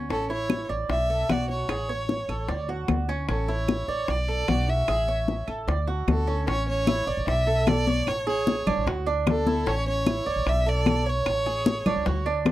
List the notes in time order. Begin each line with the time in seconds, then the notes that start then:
0.10 A1 C#4 A4, high bongo, high conga
0.30 E4 C#5, high bongo, high conga
0.50 high bongo, high conga, claves
0.69 A1 D5, high bongo, high conga
0.89 B1 E5, high bongo, high conga
1.10 A4, high conga
1.29 B1 F#4 D5, high bongo, low bongo, high conga, claves
1.49 C#5, high bongo, high conga
1.69 A1 G#4, high bongo, high conga, claves
1.89 C#5, high conga
2.09 high bongo, high conga
2.29 A1 A4, high bongo, high conga, claves
2.49 D2 D5, high bongo, high conga
2.68 F#4, high bongo, high conga
2.88 D2, high bongo, low bongo, high conga, claves
3.08 C#4, high bongo
3.29 A1 C#4 A4, high bongo, high conga
3.48 E4 C#5, high bongo, high conga
3.68 high bongo, high conga, claves
3.88 A1 D5, high bongo, high conga
4.08 B1 D5, high bongo, high conga
4.28 A4, high conga
4.48 B1 F#4, high bongo, low bongo, high conga, claves
4.68 E5, high bongo, high conga
4.88 A1 G#4, high bongo, high conga, claves
5.08 C#5, high conga
5.28 high bongo, high conga
5.47 A1 A4, high bongo, high conga, claves
5.67 D2 D5, high bongo, high conga
5.87 F#4, high bongo, high conga
6.08 D2 A4, high bongo, low bongo, high conga, claves
6.27 C#4, high bongo
6.47 A1 C#4 C#5, high bongo, high conga
6.68 C#5, high conga
6.87 E4, high bongo, high conga, claves
7.07 A1 D5
7.17 A1
7.27 B1 E5, high bongo, high conga
7.47 A4, high conga
7.67 D5, high bongo, low bongo, high conga, claves
7.87 C#5, high conga
8.07 A1 C#5, high bongo, high conga, claves
8.27 G#4 C#5, high bongo, high conga
8.47 high bongo, high conga
8.66 A1 D4, high bongo, high conga, low conga, claves
8.77 A1
8.86 D2 F#4, high bongo, high conga
9.07 D4, high conga
9.27 A4, high bongo, low bongo, high conga, claves
9.47 E4, high bongo, high conga
9.66 A1 C#4 C#5, high bongo, high conga
9.86 C#5, high conga
10.06 E4, high bongo, high conga, claves
10.26 A1 D5
10.36 A1
10.46 B1 E5, high bongo, high conga
10.66 A4 D5, high conga
10.86 high bongo, low bongo, high conga, claves
11.06 C#5
11.26 A1, high bongo, high conga, claves
11.46 G#4, high bongo, high conga
11.66 high bongo, high conga
11.86 A1 D4, high bongo, high conga, low conga, claves
11.96 C#2
12.06 D2 F#4, high bongo, high conga, low conga
12.26 D4, high conga
12.45 high bongo, low bongo, high conga, claves